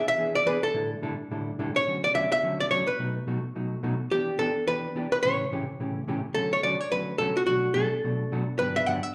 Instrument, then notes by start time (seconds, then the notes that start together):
hollow-body jazz guitar
0.08 E5
0.18 E3 B3 D4 G#4
0.35 D5
0.46 E3 B3 D4 G#4 B4
0.63 A4
0.74 A2 D3 G3 D4 E4 A4
1.02 A2 D3 G3 D4 E4 A4
1.31 A2 D3 G3 D4 E4 A4
1.59 A2 D3 G3 D4 E4 A4
1.76 C#5
1.87 D3 F#3 A3 C#4 F#4
2.04 D5
2.14 D3 F#3 A3 C#4 F#4 E5
2.32 E5
2.43 D3 F#3 A3 C#4 F#4
2.60 D5
2.70 D3 F#3 A3 C#4 F#4 C#5
2.87 B4
2.99 B2 F#3 A3 D#4 F#4
3.27 B2 F#3 A3 D#4 F#4
3.55 B2 F#3 A3 D#4 F#4
3.83 B2 F#3 A3 D#4 F#4
4.11 E3 B3 D4 G4
4.39 E3 B3 D4 G4 A4
4.67 E3 B3 D4 G4 B4
4.95 E3 B3 D4 G4
5.12 B4
5.23 A2 C#3 E3 A3 C#4 G4 C#5
5.52 A2 C#3 E3 A3 C#4 G4
5.80 A2 C#3 E3 A3 C#4 G4
6.07 A2 C#3 E3 A3 C#4 G4
6.34 D3 F#3 A3 C#4 F#4 A4
6.53 C#5
6.63 D3 F#3 A3 C#4 F#4 D5
6.80 C#5
6.92 D3 F#3 A3 C#4 F#4 B4
7.18 D3 F#3 A3 C#4 F#4 A4
7.37 F#4
7.47 B2 F#3 A3 D4 F#4
7.74 B2 F#3 A3 D4 F#4 A4
8.04 B2 F#3 A3 D4 F#4
8.32 B2 F#3 A3 D4 F#4
8.59 G2 D3 F#3 B3 D4 G4 B4
8.76 E5
8.86 G2 D3 F#3 B3 D4 G4 F#5
9.03 E5